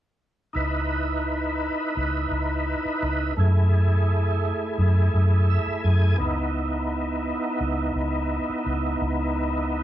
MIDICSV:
0, 0, Header, 1, 4, 480
1, 0, Start_track
1, 0, Key_signature, 4, "minor"
1, 0, Tempo, 705053
1, 379, Time_signature, 4, 2, 24, 8
1, 6694, End_track
2, 0, Start_track
2, 0, Title_t, "Tonewheel organ"
2, 0, Program_c, 0, 16
2, 362, Note_on_c, 0, 63, 65
2, 373, Note_on_c, 0, 64, 60
2, 383, Note_on_c, 0, 71, 71
2, 2266, Note_off_c, 0, 63, 0
2, 2271, Note_off_c, 0, 64, 0
2, 2276, Note_off_c, 0, 71, 0
2, 2291, Note_on_c, 0, 57, 65
2, 2303, Note_on_c, 0, 64, 60
2, 2311, Note_on_c, 0, 68, 70
2, 3744, Note_on_c, 0, 76, 66
2, 3967, Note_off_c, 0, 76, 0
2, 3974, Note_on_c, 0, 80, 64
2, 4190, Note_off_c, 0, 57, 0
2, 4196, Note_off_c, 0, 64, 0
2, 4200, Note_off_c, 0, 68, 0
2, 4201, Note_off_c, 0, 80, 0
2, 4207, Note_on_c, 0, 59, 70
2, 4218, Note_on_c, 0, 63, 63
2, 4225, Note_on_c, 0, 64, 70
2, 6694, Note_off_c, 0, 59, 0
2, 6694, Note_off_c, 0, 63, 0
2, 6694, Note_off_c, 0, 64, 0
2, 6694, End_track
3, 0, Start_track
3, 0, Title_t, "Fingered electric bass"
3, 0, Program_c, 1, 33
3, 377, Note_on_c, 1, 37, 82
3, 1144, Note_off_c, 1, 37, 0
3, 1341, Note_on_c, 1, 37, 79
3, 1532, Note_off_c, 1, 37, 0
3, 1575, Note_on_c, 1, 37, 81
3, 1866, Note_off_c, 1, 37, 0
3, 2060, Note_on_c, 1, 37, 77
3, 2252, Note_off_c, 1, 37, 0
3, 2299, Note_on_c, 1, 42, 89
3, 3066, Note_off_c, 1, 42, 0
3, 3256, Note_on_c, 1, 42, 84
3, 3450, Note_off_c, 1, 42, 0
3, 3497, Note_on_c, 1, 42, 82
3, 3787, Note_off_c, 1, 42, 0
3, 3979, Note_on_c, 1, 42, 74
3, 4171, Note_off_c, 1, 42, 0
3, 4217, Note_on_c, 1, 37, 88
3, 4984, Note_off_c, 1, 37, 0
3, 5177, Note_on_c, 1, 37, 80
3, 5370, Note_off_c, 1, 37, 0
3, 5415, Note_on_c, 1, 37, 79
3, 5706, Note_off_c, 1, 37, 0
3, 5897, Note_on_c, 1, 37, 79
3, 6090, Note_off_c, 1, 37, 0
3, 6137, Note_on_c, 1, 37, 88
3, 6694, Note_off_c, 1, 37, 0
3, 6694, End_track
4, 0, Start_track
4, 0, Title_t, "Muted fingered electric bass strokes"
4, 1942, Note_on_c, 9, 29, 33
4, 2010, Note_off_c, 9, 29, 0
4, 3861, Note_on_c, 9, 29, 35
4, 3929, Note_off_c, 9, 29, 0
4, 5781, Note_on_c, 9, 29, 32
4, 5850, Note_off_c, 9, 29, 0
4, 6694, End_track
0, 0, End_of_file